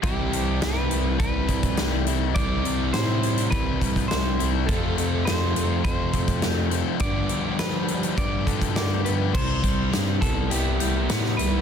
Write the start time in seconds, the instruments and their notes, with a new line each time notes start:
0.03 bass clarinet C2, overdriven electric guitar C3 E3 G3 C4 E4, clean electric guitar G4, kick, closed hi-hat
0.33 bass clarinet C2, closed hi-hat
0.61 bass clarinet C2, overdriven electric guitar E3 G3 C4 E4, clean electric guitar B4, snare, closed hi-hat
0.91 bass clarinet C2, closed hi-hat
1.19 bass clarinet C2, overdriven electric guitar C3 E3 G3 C4 E4, clean electric guitar B4, kick, closed hi-hat
1.48 bass clarinet C2, overdriven electric guitar G3 C4 E4, kick, closed hi-hat
1.63 kick, closed hi-hat
1.77 bass clarinet C2, snare, closed hi-hat
2.03 clean electric guitar A4
2.07 overdriven electric guitar G3 C4 E4, closed hi-hat
2.35 bass clarinet C2, overdriven electric guitar C3 E3 G3 C4 E4, clean electric guitar D5, kick, closed hi-hat
2.65 bass clarinet C2, closed hi-hat
2.93 bass clarinet A2, overdriven electric guitar E3 G3 C4 E4, clean electric guitar C5, snare, closed hi-hat
3.23 closed hi-hat
3.38 closed hi-hat
3.50 bass clarinet C2, overdriven electric guitar C3 E3 G3 C4 E4, clean electric guitar B4, kick, closed hi-hat
3.81 bass clarinet C2, overdriven electric guitar G3 C4 E4, kick, closed hi-hat
3.96 kick, closed hi-hat
4.08 bass clarinet C2, clean electric guitar C5, snare, closed hi-hat
4.39 bass clarinet C2, overdriven electric guitar G3 C4 E4, closed hi-hat
4.67 overdriven electric guitar F2 C3 F3 A3 C4, bass clarinet F2, clean electric guitar A4, kick, closed hi-hat
4.71 overdriven electric guitar F4
4.98 bass clarinet F2, closed hi-hat
5.25 bass clarinet F2, overdriven electric guitar F3 A3 C4 F4, clean electric guitar C5, snare, closed hi-hat
5.55 bass clarinet F2, closed hi-hat
5.84 overdriven electric guitar F2 C3 F3 A3 C4 F4, bass clarinet F2, clean electric guitar C5, kick, closed hi-hat
6.13 bass clarinet F2, overdriven electric guitar F3 A3 C4 F4, kick, closed hi-hat
6.28 kick, closed hi-hat
6.42 bass clarinet F2, snare, closed hi-hat
6.71 overdriven electric guitar F3 A3 C4 F4, closed hi-hat
7.00 bass clarinet G2, overdriven electric guitar G2 D3 F3 G3 B3 D4 G4, clean electric guitar D5, kick, closed hi-hat
7.29 closed hi-hat
7.59 overdriven electric guitar F3 G3 B3 G4, bass clarinet F3, clean electric guitar B4, snare, closed hi-hat
7.88 closed hi-hat
8.03 closed hi-hat
8.17 overdriven electric guitar G2 D3 F3 G3 B3 G4, bass clarinet G2, clean electric guitar D5, kick, closed hi-hat
8.47 bass clarinet G2, overdriven electric guitar F3 G3 B3 G4, clean electric guitar A4, kick, closed hi-hat
8.62 kick, closed hi-hat
8.76 bass clarinet G2, clean electric guitar D5, snare, closed hi-hat
9.05 bass clarinet G2, overdriven electric guitar F3 G3 B3 G4, clean electric guitar B4, closed hi-hat
9.34 bass clarinet C2, overdriven electric guitar C3, clean electric guitar C5, kick, crash
9.63 bass clarinet C2, overdriven electric guitar G3, kick, closed hi-hat
9.92 bass clarinet G2, overdriven electric guitar C3 G3, snare, closed hi-hat
10.21 bass clarinet C2, overdriven electric guitar G3 B3, clean electric guitar A4, kick, closed hi-hat
10.50 bass clarinet C2, overdriven electric guitar B3 E4, clean electric guitar G4, closed hi-hat
10.80 bass clarinet C2, overdriven electric guitar G3 E4, closed hi-hat
11.09 bass clarinet A2, overdriven electric guitar B3, snare, closed hi-hat
11.25 snare
11.37 bass clarinet C2, overdriven electric guitar G3 E4, clean electric guitar B4, closed hi-hat